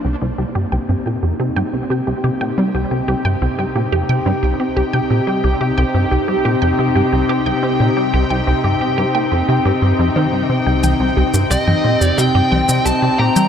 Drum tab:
SH |----------------|----------------|----------------|----------------|
T1 |----------------|----------------|----------------|----------------|

SH |x--xx--xx--xx--x|
T1 |o----o----o----o|